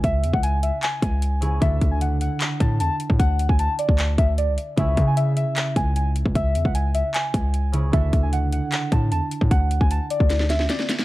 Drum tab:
HH |x-x-x-x-x-x-x-x-|x-x-x-x-x-x-x-x-|x-x-x-x-x-x-x-x-|x-x-x-x-x-x-x-x-|
CP |--------x-------|--------x-------|--------x-------|--------x-------|
SD |----------------|----------------|----------------|----------------|
BD |o--o------o-----|o-o-------o----o|o--o---o--o-----|o-o-------o----o|

HH |x-x-x-x-x-x-x-x-|x-x-x-x-x-x-x-x-|x-x-x-x-x-x-x-x-|
CP |--------x-------|--------x-------|----------------|
SD |----------------|----------------|--------oooooooo|
BD |o--o------o-----|o-o-------o----o|o--o---o--------|